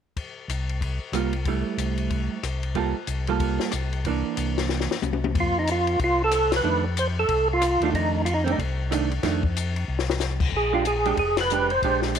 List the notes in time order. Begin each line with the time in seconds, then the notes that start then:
0.17 kick, ride
0.48 C2, hi-hat pedal, ride
0.69 ride
0.81 kick, ride
1.12 C2 G3 A#3 F4, cross-stick, hi-hat pedal, ride
1.33 ride
1.45 G3 A3 E4, kick, ride
1.77 C2, hi-hat pedal, ride
1.98 ride
2.10 kick, ride
2.43 C2, cross-stick, hi-hat pedal, ride
2.63 ride
2.75 G3 A#3 F4 A4, kick, ride
3.07 C2, hi-hat pedal, ride
3.27 G3 A#3 F4 A4, ride
3.40 kick, ride
3.60 snare
3.72 C2, cross-stick, hi-hat pedal, ride
3.93 ride
4.05 E3 A#3 D4, kick, ride
4.37 C2, hi-hat pedal, ride
4.58 snare, ride
4.69 snare
4.80 snare
4.91 snare
5.02 C2, hi-hat pedal, high tom
5.13 high tom
5.24 high tom
5.35 F2, kick, ride
5.40 F4
5.59 D#4
5.67 hi-hat pedal, ride
5.71 F4
5.87 ride
5.99 C2, kick, ride
6.04 F4
6.24 A4
6.31 cross-stick, hi-hat pedal, ride
6.52 snare, ride
6.56 B4
6.64 F2 D#3 A3 D4
6.97 C5, hi-hat pedal, ride
7.19 A4
7.29 C2, kick, ride
7.53 F4
7.62 cross-stick, hi-hat pedal, ride
7.80 D#2 D#3 A3 D4, ride
7.85 F4
7.93 F2 D#4, kick, ride
8.25 F4, hi-hat pedal, ride
8.34 D#4
8.44 D#3 A3 C4 D4, ride
8.52 D#4
8.58 C2, kick, ride
8.91 D#3 A3 D4, cross-stick, hi-hat pedal, ride
9.11 ride
9.23 F2 D#3 A3 D4, kick, snare, ride
9.43 kick
9.56 hi-hat pedal, ride
9.76 ride
9.88 C2
9.99 snare
10.10 snare
10.20 snare, hi-hat pedal
10.40 kick, crash
10.52 A#1, kick
10.56 G#4
10.73 G#3 D4 F4 G4
10.85 G#4, hi-hat pedal, ride
11.05 G#3 D4 G4, ride
11.17 F1 G#4, kick, ride
11.37 B4, snare, ride
11.50 G#3 D4 G4, hi-hat pedal
11.70 C5, ride
11.82 A#1 G#3 D4 G4, kick, ride
12.02 snare
12.15 hi-hat pedal, ride